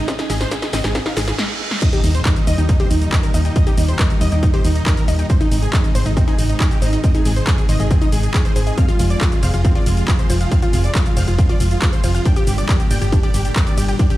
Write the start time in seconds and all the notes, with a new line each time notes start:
Already playing: C3 D#3 G#3 D#4 G#4, riser
0.08 C4 D#5, kick, snare, closed hi-hat, shaker
0.19 D#4 G#4, snare, closed hi-hat, shaker
0.30 G#1 G#4 D#5, snare, open hi-hat, shaker
0.41 C5, snare, closed hi-hat, shaker
0.51 G#4, kick, snare, closed hi-hat, shaker
0.62 G#4 D#5, snare, closed hi-hat, shaker
0.73 G#1 C4 D#5, snare, open hi-hat, shaker
0.84 G#1 G#4, snare, closed hi-hat, shaker
0.95 C4 G#4, kick, snare, closed hi-hat, reverse cymbal, shaker
1.06 D#4 F5, snare, closed hi-hat
1.17 G#1 G#4, snare, open hi-hat, shaker
1.28 G#4, snare, closed hi-hat, shaker
1.39 snare
1.71 snare
1.82 A#2 D#3 G3 D#4 G4 D#5, kick, closed hi-hat, crash, impact, shaker
1.93 D#4 G4, closed hi-hat, shaker
2.04 D#2 D#4, open hi-hat, shaker
2.15 C5, closed hi-hat, shaker
2.25 D#4 A#4, kick, clap, closed hi-hat, shaker
2.36 D#4, closed hi-hat, shaker
2.47 D#2 D#5, open hi-hat, shaker
2.58 D#2 D#4 G5, closed hi-hat, shaker
2.69 D#4, kick, closed hi-hat, shaker
2.80 G4 C5, closed hi-hat
2.91 D#2 D#4, open hi-hat, shaker
3.02 D#4, closed hi-hat, shaker
3.12 D#4 A#4, kick, clap, closed hi-hat, shaker
3.23 A#4, closed hi-hat, shaker
3.34 D#2 D#4 D#5, open hi-hat, shaker
3.45 D#4 G5, closed hi-hat, shaker
3.56 D#4 D#5, kick, closed hi-hat, shaker
3.67 D#4 G4, closed hi-hat, shaker
3.78 D#2 D#4, open hi-hat, shaker
3.88 C5, closed hi-hat, shaker
3.99 D#4 A#4, kick, clap, closed hi-hat, shaker
4.10 D#4, closed hi-hat, shaker
4.21 D#2 D#5, open hi-hat, shaker
4.32 D#2 D#4 G5, closed hi-hat, shaker
4.43 D#4, kick, closed hi-hat, shaker
4.54 G4 C5, closed hi-hat
4.65 D#2 D#4, open hi-hat, shaker
4.75 D#4, closed hi-hat, shaker
4.86 D#4 A#4, kick, clap, closed hi-hat, shaker
4.97 A#4, closed hi-hat, shaker
5.08 D#2 D#4 D#5, open hi-hat, shaker
5.19 D#4 G5, closed hi-hat, shaker
5.30 C3 D#3 G#3 C4 D#4 G#4 C5, kick, closed hi-hat, shaker
5.41 D#4, closed hi-hat, shaker
5.51 G#1 D#4, open hi-hat, shaker
5.62 G#4, closed hi-hat, shaker
5.73 D#4 G#4, kick, clap, closed hi-hat, shaker
5.84 D#4, closed hi-hat, shaker
5.95 G#1 C5, open hi-hat, shaker
6.06 G#1 D#4 D#5, closed hi-hat, shaker
6.17 C4 D#4, kick, closed hi-hat, shaker
6.28 D#4 G#4, closed hi-hat
6.38 G#1 D#4, open hi-hat, shaker
6.49 D#4, closed hi-hat, shaker
6.60 D#4 G#4, kick, clap, closed hi-hat, shaker
6.71 G4, closed hi-hat, shaker
6.82 G#1 D#4 C5, open hi-hat, shaker
6.93 D#4 D#5, closed hi-hat, shaker
7.04 C4 D#5, kick, closed hi-hat, shaker
7.15 D#4 G#4, closed hi-hat, shaker
7.25 G#1 G#4, open hi-hat, shaker
7.36 C5, closed hi-hat, shaker
7.47 G#4, kick, clap, closed hi-hat, shaker
7.58 G#4, closed hi-hat, shaker
7.69 G#1 C5 D#5, open hi-hat, shaker
7.80 G#1 G#4 D#5, closed hi-hat, shaker
7.91 C4 G#4, kick, closed hi-hat, shaker
8.01 D#4 D#5, closed hi-hat, shaker
8.12 G#1 G#4, open hi-hat, shaker
8.23 G#4, closed hi-hat, shaker
8.34 G#4, kick, clap, closed hi-hat, shaker
8.45 C5, closed hi-hat, shaker
8.56 G#1 G#4 C5, open hi-hat, shaker
8.67 G#4 D#5, closed hi-hat, shaker
8.78 C3 F3 C4 F4 F5, kick, closed hi-hat, shaker
8.88 F4, closed hi-hat, shaker
8.99 F1 F4, open hi-hat, ride, shaker
9.10 D5, closed hi-hat, shaker
9.21 F4 G#4, kick, clap, closed hi-hat, shaker
9.32 F4, closed hi-hat, shaker
9.43 F1 C5 F5, open hi-hat, ride, shaker
9.54 F1 F4 F5, closed hi-hat, shaker
9.65 C4 F4, kick, closed hi-hat, shaker
9.75 F4 D5, closed hi-hat
9.86 F1 F4, open hi-hat, ride, shaker
9.97 F4, closed hi-hat, shaker
10.08 F4 G#4, kick, clap, closed hi-hat, shaker
10.19 C5, closed hi-hat, shaker
10.30 F1 F4 C5, open hi-hat, ride, shaker
10.41 F4 F5, closed hi-hat, shaker
10.52 C4 F5, kick, closed hi-hat, shaker
10.62 F4, closed hi-hat, shaker
10.73 F1 F4, open hi-hat, ride, shaker
10.84 D5, closed hi-hat, shaker
10.95 F4 G#4, kick, clap, closed hi-hat, shaker
11.06 F4, closed hi-hat, shaker
11.17 F1 C5 F5, open hi-hat, ride, shaker
11.28 F1 F4 F5, closed hi-hat, shaker
11.39 C4 F4, kick, closed hi-hat, shaker
11.49 F4 D5, closed hi-hat
11.60 F1 F4, open hi-hat, ride, shaker
11.71 F4, closed hi-hat, shaker
11.82 F4 G#4, kick, clap, closed hi-hat, shaker
11.93 C5, closed hi-hat, shaker
12.04 F1 F4 C5, open hi-hat, ride, shaker
12.15 F4 F5, closed hi-hat, shaker
12.25 A#2 D3 G3 D4 G4 G5, kick, closed hi-hat, shaker
12.36 G4, closed hi-hat, shaker
12.47 G1 G4, open hi-hat, ride, shaker
12.58 D5, closed hi-hat, shaker
12.69 G4 A#4, kick, clap, closed hi-hat, shaker
12.80 G4, closed hi-hat, shaker
12.91 G1 D5 G5, open hi-hat, ride, shaker
13.02 G1 G4 G5, closed hi-hat, shaker
13.12 D4 G4, kick, closed hi-hat, shaker
13.23 G4 D5, closed hi-hat
13.34 G1 G4, open hi-hat, ride, shaker
13.45 G4, closed hi-hat, shaker
13.56 G4 A#4, kick, clap, closed hi-hat, shaker
13.67 D5, closed hi-hat, shaker
13.78 G1 G4 D5, open hi-hat, ride, shaker
13.88 G4 G5, closed hi-hat, shaker
13.99 D4 D5, kick, closed hi-hat, shaker
14.10 G4, closed hi-hat, shaker